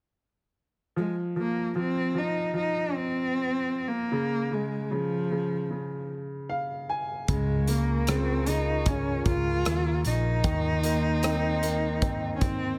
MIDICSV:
0, 0, Header, 1, 6, 480
1, 0, Start_track
1, 0, Tempo, 789474
1, 587, Time_signature, 4, 2, 24, 8
1, 7774, End_track
2, 0, Start_track
2, 0, Title_t, "Analog synth pad"
2, 0, Program_c, 0, 89
2, 4427, Note_on_c, 0, 85, 73
2, 4428, Note_on_c, 0, 65, 65
2, 4428, Note_on_c, 0, 70, 60
2, 4432, Note_on_c, 0, 80, 59
2, 6328, Note_off_c, 0, 65, 0
2, 6328, Note_off_c, 0, 85, 0
2, 6331, Note_off_c, 0, 80, 0
2, 6347, Note_on_c, 0, 84, 80
2, 6350, Note_on_c, 0, 63, 64
2, 6351, Note_on_c, 0, 79, 65
2, 7763, Note_off_c, 0, 70, 0
2, 7773, Note_off_c, 0, 84, 0
2, 7774, Note_off_c, 0, 63, 0
2, 7774, Note_off_c, 0, 79, 0
2, 7774, End_track
3, 0, Start_track
3, 0, Title_t, "Cello"
3, 0, Program_c, 1, 42
3, 597, Note_on_c, 1, 56, 73
3, 703, Note_off_c, 1, 56, 0
3, 841, Note_on_c, 1, 58, 63
3, 1058, Note_off_c, 1, 58, 0
3, 1079, Note_on_c, 1, 60, 83
3, 1325, Note_on_c, 1, 63, 77
3, 1334, Note_off_c, 1, 60, 0
3, 1556, Note_off_c, 1, 63, 0
3, 1561, Note_on_c, 1, 63, 82
3, 1799, Note_on_c, 1, 60, 85
3, 1808, Note_off_c, 1, 63, 0
3, 2359, Note_on_c, 1, 58, 78
3, 2368, Note_off_c, 1, 60, 0
3, 2758, Note_on_c, 1, 56, 63
3, 2767, Note_off_c, 1, 58, 0
3, 3000, Note_on_c, 1, 53, 64
3, 3009, Note_off_c, 1, 56, 0
3, 3714, Note_off_c, 1, 53, 0
3, 4435, Note_on_c, 1, 56, 78
3, 4674, Note_on_c, 1, 58, 71
3, 4683, Note_off_c, 1, 56, 0
3, 4918, Note_on_c, 1, 60, 81
3, 4927, Note_off_c, 1, 58, 0
3, 5157, Note_on_c, 1, 63, 79
3, 5166, Note_off_c, 1, 60, 0
3, 5399, Note_on_c, 1, 61, 82
3, 5408, Note_off_c, 1, 63, 0
3, 5632, Note_off_c, 1, 61, 0
3, 5635, Note_on_c, 1, 65, 88
3, 6087, Note_off_c, 1, 65, 0
3, 6120, Note_on_c, 1, 63, 86
3, 7487, Note_off_c, 1, 63, 0
3, 7514, Note_on_c, 1, 61, 52
3, 7554, Note_on_c, 1, 60, 75
3, 7564, Note_off_c, 1, 61, 0
3, 7774, Note_off_c, 1, 60, 0
3, 7774, End_track
4, 0, Start_track
4, 0, Title_t, "Upright piano"
4, 0, Program_c, 2, 0
4, 586, Note_on_c, 2, 53, 49
4, 696, Control_c, 2, 64, 127
4, 818, Note_off_c, 2, 53, 0
4, 827, Note_on_c, 2, 53, 39
4, 1058, Note_off_c, 2, 53, 0
4, 1067, Note_on_c, 2, 53, 45
4, 1296, Note_off_c, 2, 53, 0
4, 1305, Note_on_c, 2, 53, 41
4, 1534, Note_off_c, 2, 53, 0
4, 1543, Note_on_c, 2, 53, 41
4, 2481, Note_off_c, 2, 53, 0
4, 2502, Note_on_c, 2, 49, 52
4, 2514, Control_c, 2, 64, 0
4, 2642, Control_c, 2, 64, 127
4, 2733, Note_off_c, 2, 49, 0
4, 2742, Note_on_c, 2, 49, 42
4, 2974, Note_off_c, 2, 49, 0
4, 2983, Note_on_c, 2, 49, 47
4, 3219, Note_off_c, 2, 49, 0
4, 3228, Note_on_c, 2, 49, 42
4, 3459, Note_off_c, 2, 49, 0
4, 3468, Note_on_c, 2, 49, 43
4, 3949, Note_on_c, 2, 77, 59
4, 4171, Note_off_c, 2, 77, 0
4, 4192, Note_on_c, 2, 80, 56
4, 4404, Note_off_c, 2, 49, 0
4, 4413, Note_off_c, 2, 80, 0
4, 4429, Note_on_c, 2, 49, 57
4, 4434, Control_c, 2, 64, 0
4, 4525, Control_c, 2, 64, 127
4, 4662, Note_off_c, 2, 49, 0
4, 4671, Note_on_c, 2, 49, 42
4, 4902, Note_off_c, 2, 49, 0
4, 4911, Note_on_c, 2, 49, 53
4, 5143, Note_off_c, 2, 49, 0
4, 5152, Note_on_c, 2, 49, 49
4, 5379, Note_off_c, 2, 49, 0
4, 5388, Note_on_c, 2, 49, 49
4, 6323, Note_off_c, 2, 49, 0
4, 6348, Note_on_c, 2, 51, 52
4, 6356, Control_c, 2, 64, 0
4, 6452, Control_c, 2, 64, 127
4, 6588, Note_on_c, 2, 58, 42
4, 6830, Note_on_c, 2, 60, 49
4, 7058, Note_off_c, 2, 58, 0
4, 7067, Note_on_c, 2, 58, 42
4, 7299, Note_off_c, 2, 60, 0
4, 7308, Note_on_c, 2, 60, 44
4, 7763, Note_off_c, 2, 51, 0
4, 7766, Note_off_c, 2, 58, 0
4, 7773, Note_off_c, 2, 60, 0
4, 7774, End_track
5, 0, Start_track
5, 0, Title_t, "Fretless electric bass"
5, 0, Program_c, 3, 35
5, 4429, Note_on_c, 3, 37, 84
5, 5604, Note_off_c, 3, 37, 0
5, 5628, Note_on_c, 3, 37, 85
5, 5851, Note_off_c, 3, 37, 0
5, 5873, Note_on_c, 3, 39, 67
5, 6094, Note_off_c, 3, 39, 0
5, 6114, Note_on_c, 3, 34, 75
5, 6334, Note_off_c, 3, 34, 0
5, 6349, Note_on_c, 3, 39, 82
5, 7764, Note_off_c, 3, 39, 0
5, 7774, End_track
6, 0, Start_track
6, 0, Title_t, "Drums"
6, 4428, Note_on_c, 9, 42, 68
6, 4429, Note_on_c, 9, 36, 76
6, 4489, Note_off_c, 9, 42, 0
6, 4490, Note_off_c, 9, 36, 0
6, 4666, Note_on_c, 9, 42, 58
6, 4727, Note_off_c, 9, 42, 0
6, 4907, Note_on_c, 9, 42, 80
6, 4916, Note_on_c, 9, 37, 88
6, 4968, Note_off_c, 9, 42, 0
6, 4977, Note_off_c, 9, 37, 0
6, 5147, Note_on_c, 9, 42, 60
6, 5208, Note_off_c, 9, 42, 0
6, 5385, Note_on_c, 9, 42, 75
6, 5388, Note_on_c, 9, 36, 85
6, 5446, Note_off_c, 9, 42, 0
6, 5449, Note_off_c, 9, 36, 0
6, 5627, Note_on_c, 9, 42, 51
6, 5628, Note_on_c, 9, 36, 82
6, 5688, Note_off_c, 9, 42, 0
6, 5689, Note_off_c, 9, 36, 0
6, 5870, Note_on_c, 9, 42, 68
6, 5875, Note_on_c, 9, 37, 92
6, 5930, Note_off_c, 9, 42, 0
6, 5936, Note_off_c, 9, 37, 0
6, 6108, Note_on_c, 9, 42, 56
6, 6169, Note_off_c, 9, 42, 0
6, 6347, Note_on_c, 9, 42, 72
6, 6348, Note_on_c, 9, 36, 80
6, 6407, Note_off_c, 9, 42, 0
6, 6409, Note_off_c, 9, 36, 0
6, 6588, Note_on_c, 9, 42, 58
6, 6648, Note_off_c, 9, 42, 0
6, 6827, Note_on_c, 9, 42, 78
6, 6836, Note_on_c, 9, 37, 91
6, 6888, Note_off_c, 9, 42, 0
6, 6896, Note_off_c, 9, 37, 0
6, 7070, Note_on_c, 9, 42, 61
6, 7131, Note_off_c, 9, 42, 0
6, 7308, Note_on_c, 9, 36, 87
6, 7308, Note_on_c, 9, 42, 72
6, 7369, Note_off_c, 9, 36, 0
6, 7369, Note_off_c, 9, 42, 0
6, 7546, Note_on_c, 9, 42, 56
6, 7548, Note_on_c, 9, 36, 77
6, 7607, Note_off_c, 9, 42, 0
6, 7609, Note_off_c, 9, 36, 0
6, 7774, End_track
0, 0, End_of_file